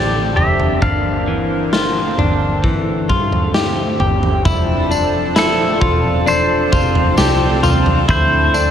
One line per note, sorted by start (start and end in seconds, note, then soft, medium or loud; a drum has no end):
0.00 0.34 A1 medium
0.00 4.42 D3 medium
0.00 4.42 C4 medium
0.00 0.79 D4 medium
0.00 0.35 G4 medium
0.00 0.79 A4 medium
0.00 0.36 D5 medium
0.36 0.80 F1 medium
0.36 0.82 G4 medium
0.36 0.82 E5 medium
0.36 floor tom medium
0.60 floor tom medium
0.82 2.14 G1 medium
0.82 2.62 A#3 medium
0.82 1.27 D4 medium
0.82 3.51 F5 medium
0.82 kick medium
0.82 floor tom medium
1.28 1.73 E3 medium
1.73 2.18 F4 medium
1.73 snare loud
2.18 3.11 G1 medium
2.18 2.64 D4 medium
2.18 floor tom medium
2.64 3.09 E3 medium
2.64 4.44 A3 medium
2.64 kick medium
3.09 3.96 G2 medium
3.09 3.54 F4 medium
3.09 kick medium
3.32 floor tom medium
3.54 3.99 G4 medium
3.54 snare loud
3.99 4.43 G1 medium
3.99 4.45 G4 medium
3.99 floor tom medium
4.23 floor tom medium
4.45 5.78 F1 loud
4.45 8.06 F3 medium
4.45 8.71 C4 medium
4.45 8.06 D4 medium
4.45 4.91 E4 loud
4.45 8.06 A4 loud
4.45 kick loud
4.45 floor tom loud
4.45 tambourine medium
4.91 5.36 D4 medium
4.91 tambourine medium
5.36 5.81 E4 medium
5.36 6.28 A4 medium
5.36 snare loud
5.36 tambourine loud
5.81 6.69 E1 loud
5.81 6.27 F4 medium
5.81 kick medium
5.81 floor tom medium
6.26 6.72 D4 medium
6.26 8.09 C5 loud
6.26 tambourine medium
6.72 7.16 F1 loud
6.72 7.17 F4 medium
6.72 kick loud
6.72 tambourine medium
6.95 floor tom medium
7.18 7.61 C2 medium
7.18 7.63 G4 medium
7.18 snare loud
7.18 tambourine loud
7.63 8.07 C2 medium
7.63 8.08 F4 medium
7.63 floor tom medium
7.63 tambourine medium
7.86 floor tom medium
8.08 8.71 D2 loud
8.08 8.71 D3 medium
8.08 8.71 A3 medium
8.08 8.54 E4 loud
8.08 8.71 A4 loud
8.08 8.71 C5 loud
8.08 kick loud
8.08 floor tom loud
8.08 tambourine medium
8.54 8.71 D4 medium
8.54 tambourine medium